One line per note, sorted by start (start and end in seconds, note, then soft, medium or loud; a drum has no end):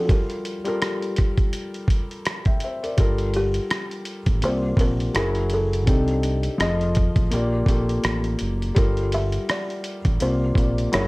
0.00 0.11 F3 medium
0.00 0.11 C4 medium
0.00 0.11 D4 medium
0.00 0.10 A4 medium
0.05 0.54 G3 medium
0.05 0.55 F4 medium
0.05 0.10 F#4 medium
0.09 2.59 G4 medium
0.09 0.55 A4 medium
0.09 0.56 A#4 medium
0.09 kick loud
0.09 closed hi-hat medium
0.30 closed hi-hat soft
0.45 closed hi-hat medium
0.64 1.83 G3 medium
0.64 1.84 F4 medium
0.64 1.84 A4 medium
0.64 1.85 A#4 loud
0.64 closed hi-hat soft
0.82 cross-stick loud
0.82 closed hi-hat medium
1.02 closed hi-hat soft
1.16 kick medium
1.16 cross-stick soft
1.16 closed hi-hat medium
1.37 kick medium
1.37 closed hi-hat medium
1.53 closed hi-hat medium
1.74 closed hi-hat soft
1.88 kick loud
1.88 closed hi-hat medium
2.11 closed hi-hat soft
2.25 cross-stick loud
2.25 closed hi-hat medium
2.45 2.62 E5 medium
2.45 2.61 G5 medium
2.45 kick loud
2.45 closed hi-hat soft
2.60 2.83 E5 medium
2.60 closed hi-hat medium
2.65 2.83 C5 medium
2.83 2.99 A#4 medium
2.83 3.17 D5 medium
2.83 closed hi-hat soft
2.97 3.58 G1 loud
2.97 4.19 G3 medium
2.97 4.19 F4 medium
2.97 4.20 A4 medium
2.97 4.20 A#4 medium
2.97 kick loud
2.97 closed hi-hat medium
3.18 closed hi-hat soft
3.34 4.40 G4 medium
3.34 closed hi-hat medium
3.54 closed hi-hat soft
3.70 cross-stick loud
3.70 closed hi-hat medium
3.91 closed hi-hat soft
4.05 closed hi-hat medium
4.26 4.43 A1 medium
4.26 kick medium
4.26 closed hi-hat medium
4.42 4.73 C2 loud
4.42 4.73 C3 medium
4.42 4.74 A#3 medium
4.42 4.74 F4 medium
4.42 4.61 C5 loud
4.42 4.75 D5 medium
4.42 closed hi-hat medium
4.77 5.08 A#1 medium
4.77 5.14 C3 medium
4.77 5.14 A#3 medium
4.77 5.15 F4 medium
4.77 5.16 A#4 medium
4.77 5.54 A#4 loud
4.77 kick loud
4.77 closed hi-hat medium
5.00 closed hi-hat soft
5.14 5.88 F#1 loud
5.14 5.76 F#3 medium
5.14 5.77 E4 medium
5.14 5.77 G#4 medium
5.14 5.78 A#4 medium
5.14 cross-stick loud
5.14 closed hi-hat medium
5.35 closed hi-hat soft
5.50 6.57 A4 medium
5.50 closed hi-hat medium
5.73 closed hi-hat soft
5.86 6.48 C2 loud
5.86 6.59 C3 medium
5.86 6.59 C4 medium
5.86 6.59 D4 medium
5.86 6.60 D#4 medium
5.86 6.60 G4 medium
5.86 6.60 A4 medium
5.86 kick loud
5.86 closed hi-hat medium
6.08 closed hi-hat soft
6.23 closed hi-hat medium
6.43 closed hi-hat soft
6.58 7.07 F1 loud
6.58 7.20 F3 medium
6.58 7.21 F4 medium
6.58 6.67 G#4 medium
6.58 7.22 D#5 loud
6.58 cross-stick loud
6.58 closed hi-hat medium
6.67 7.25 A4 medium
6.81 closed hi-hat soft
6.95 kick loud
6.95 closed hi-hat medium
7.16 7.29 A1 medium
7.16 kick medium
7.16 closed hi-hat medium
7.31 7.62 A#1 loud
7.31 7.62 A#3 medium
7.31 7.63 F4 medium
7.31 7.63 G4 medium
7.31 7.64 D5 medium
7.31 closed hi-hat medium
7.66 7.97 A#1 medium
7.66 8.60 A#3 medium
7.66 8.60 F4 medium
7.66 8.61 G4 medium
7.66 kick loud
7.66 closed hi-hat medium
7.70 8.61 A4 medium
7.89 closed hi-hat soft
8.04 8.35 A1 medium
8.04 cross-stick loud
8.04 closed hi-hat medium
8.24 closed hi-hat soft
8.39 8.71 F#1 medium
8.39 closed hi-hat medium
8.62 closed hi-hat soft
8.75 9.37 G1 loud
8.75 9.97 G3 loud
8.75 9.97 F4 medium
8.75 9.98 A4 medium
8.75 9.98 A#4 loud
8.75 kick loud
8.75 closed hi-hat medium
8.97 closed hi-hat soft
9.12 9.51 E5 loud
9.12 closed hi-hat medium
9.32 closed hi-hat soft
9.49 10.24 D5 loud
9.49 cross-stick loud
9.49 closed hi-hat medium
9.70 closed hi-hat soft
9.84 closed hi-hat medium
10.05 10.18 A1 medium
10.05 kick medium
10.05 closed hi-hat medium
10.20 10.51 C2 loud
10.20 10.51 C3 medium
10.20 10.52 A#3 medium
10.20 10.52 F4 medium
10.20 10.96 C5 loud
10.20 10.53 D5 medium
10.20 closed hi-hat medium
10.55 10.86 A#1 medium
10.55 10.93 C3 medium
10.55 10.93 A#3 medium
10.55 10.94 F4 medium
10.55 10.94 D5 medium
10.55 kick loud
10.55 closed hi-hat medium
10.78 closed hi-hat soft
10.92 11.08 F#1 loud
10.92 11.08 F#3 medium
10.92 11.08 E4 medium
10.92 11.08 G#4 medium
10.92 11.08 A#4 medium
10.92 11.08 C#5 medium
10.92 cross-stick loud
10.92 closed hi-hat medium